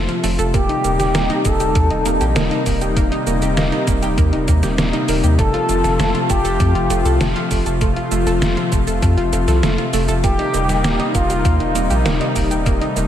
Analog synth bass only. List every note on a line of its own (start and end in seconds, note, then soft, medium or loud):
0.24 0.37 F1 medium
0.39 0.52 F1 medium
0.54 0.67 D#1 loud
0.84 0.98 D#1 medium
0.99 1.13 D#1 medium
1.15 1.28 D#1 loud
1.45 1.58 D#1 loud
1.60 1.74 D#1 medium
1.75 1.89 D#2 loud
1.90 2.04 D#1 medium
2.06 2.19 D#1 medium
2.21 2.34 A#1 medium
2.36 2.49 D#1 loud
2.66 2.80 D#1 medium
2.81 2.95 D#1 medium
2.97 3.10 D#1 loud
3.27 3.40 D#1 medium
3.42 3.55 D#1 medium
3.57 3.70 D#1 loud
3.87 4.01 D#1 loud
4.02 4.16 D#1 medium
4.18 4.31 D#2 loud
4.33 4.46 D#1 medium
4.48 4.61 D#2 loud
4.63 4.77 D#1 medium
4.78 4.92 D#1 loud
5.08 5.22 D#1 medium
5.24 5.37 D#2 medium
5.39 5.52 F1 loud
5.69 5.83 F1 loud
5.84 5.98 F1 medium
5.99 6.13 F1 loud
6.30 6.43 F1 loud
6.45 6.58 F1 medium
6.60 6.74 F2 loud
6.75 6.89 F1 medium
6.90 7.04 F1 loud
7.05 7.19 C2 medium
7.20 7.34 F1 loud
7.51 7.64 F1 loud
7.66 7.79 F1 medium
7.81 7.95 F1 loud
8.11 8.25 F1 medium
8.27 8.40 F1 medium
8.42 8.55 F1 loud
8.72 8.86 F1 loud
8.87 9.01 F1 medium
9.02 9.16 F2 loud
9.17 9.31 F1 medium
9.33 9.46 F1 loud
9.48 9.61 C2 medium
9.63 9.77 F1 loud
9.93 10.07 F1 loud
10.09 10.22 F1 medium
10.24 10.37 D#1 loud
10.54 10.67 D#1 medium
10.69 10.83 D#1 medium
10.84 10.98 D#1 loud
11.15 11.28 D#1 loud
11.30 11.43 D#1 medium
11.45 11.58 D#2 loud
11.60 11.73 D#1 medium
11.75 11.89 D#1 medium
11.90 12.04 A#1 medium
12.05 12.19 D#1 loud
12.36 12.49 D#1 loud
12.51 12.65 D#1 medium
12.66 12.80 D#1 loud
12.96 13.07 D#1 loud